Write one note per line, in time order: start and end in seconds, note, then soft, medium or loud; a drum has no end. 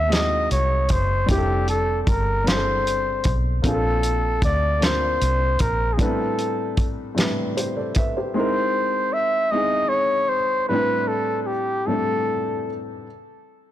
0.00 0.47 D#2 loud
0.00 0.08 G#3 medium
0.00 0.10 C4 medium
0.00 0.11 D#4 medium
0.00 0.13 E4 medium
0.00 1.31 A#4 medium
0.00 1.31 B4 medium
0.00 0.14 E5 loud
0.08 0.89 G#3 medium
0.08 0.90 C4 medium
0.08 0.90 D#4 medium
0.08 0.51 D#5 loud
0.08 closed hi-hat medium
0.13 0.91 E4 medium
0.13 0.92 F#4 medium
0.13 snare loud
0.51 0.93 C2 medium
0.51 0.94 C#5 loud
0.51 closed hi-hat medium
0.89 1.26 F#1 medium
0.89 1.30 C5 medium
0.89 kick medium
0.89 closed hi-hat medium
1.26 2.04 F1 medium
1.26 2.07 G3 medium
1.26 2.07 C4 medium
1.26 2.08 D4 medium
1.26 2.08 E4 medium
1.26 kick loud
1.26 closed hi-hat medium
1.31 1.67 G4 loud
1.31 1.37 G4 medium
1.38 2.12 A4 medium
1.68 2.03 A4 loud
1.68 closed hi-hat soft
2.03 2.10 A4 medium
2.03 closed hi-hat soft
2.07 3.21 G1 medium
2.07 2.50 A#4 medium
2.07 kick loud
2.44 3.24 G3 medium
2.44 3.25 C4 medium
2.44 3.26 D4 medium
2.44 closed hi-hat medium
2.48 3.26 E4 medium
2.48 2.55 G#4 medium
2.48 3.36 C5 loud
2.48 snare loud
2.56 3.30 A4 medium
2.87 closed hi-hat medium
3.24 3.61 B1 medium
3.24 kick loud
3.24 closed hi-hat medium
3.62 4.39 A#1 loud
3.62 4.42 A#3 medium
3.62 4.43 C4 medium
3.62 4.44 D4 medium
3.62 4.44 F4 medium
3.62 kick loud
3.62 closed hi-hat medium
3.66 3.73 G#4 medium
3.66 4.40 A4 loud
3.74 4.48 A4 medium
4.03 closed hi-hat soft
4.42 5.17 D2 medium
4.42 4.85 D5 loud
4.42 kick medium
4.42 closed hi-hat soft
4.79 5.60 A#3 medium
4.79 5.60 C4 medium
4.79 5.61 D4 medium
4.79 closed hi-hat medium
4.83 5.62 F4 medium
4.83 5.62 A#4 medium
4.83 5.62 C5 loud
4.83 snare loud
5.21 5.57 C2 medium
5.21 closed hi-hat medium
5.59 5.96 A#1 medium
5.59 5.95 A#4 medium
5.59 kick medium
5.59 closed hi-hat medium
5.93 6.77 A2 medium
5.93 6.02 G#4 medium
5.98 6.78 G3 medium
5.98 6.06 B3 medium
5.98 6.79 D4 medium
5.98 6.80 E4 medium
5.98 6.88 A4 medium
5.98 kick loud
5.98 closed hi-hat medium
6.02 6.82 C4 medium
6.02 6.80 B4 medium
6.38 closed hi-hat soft
6.77 kick medium
6.77 closed hi-hat soft
7.15 7.95 A2 medium
7.15 7.96 G3 medium
7.15 7.96 C4 medium
7.15 7.97 D4 medium
7.15 snare loud
7.15 closed hi-hat medium
7.19 7.97 E4 medium
7.19 7.58 B4 medium
7.57 7.75 G4 medium
7.57 7.75 C5 medium
7.57 closed hi-hat medium
7.77 7.95 A4 medium
7.77 7.95 D5 medium
7.94 8.15 B4 medium
7.94 8.15 E5 medium
7.94 kick medium
7.94 closed hi-hat medium
8.17 8.54 G4 medium
8.17 8.53 C5 medium
8.34 9.14 G#3 medium
8.34 9.14 C4 medium
8.34 9.15 D#4 medium
8.34 9.15 C5 loud
8.38 9.16 E4 medium
8.38 9.16 A#4 medium
9.13 9.53 E5 loud
9.51 10.31 G#3 medium
9.51 10.32 C4 medium
9.51 10.32 D#4 medium
9.51 9.90 D#5 loud
9.56 10.33 E4 medium
9.56 10.34 G#4 medium
9.89 10.30 C#5 loud
10.29 10.68 C5 loud
10.69 11.49 A2 medium
10.69 11.49 G3 medium
10.69 11.50 C4 medium
10.69 11.09 B4 loud
10.73 11.50 D4 medium
10.73 11.51 E4 medium
10.73 11.51 B4 medium
11.08 11.42 A4 medium
11.42 11.48 A4 medium
11.47 11.88 G4 medium
11.87 12.66 A2 medium
11.87 12.67 G3 medium
11.87 12.67 C4 medium
11.87 12.68 D4 medium
11.87 12.76 A4 medium
11.91 12.68 E4 medium
11.91 12.69 A4 medium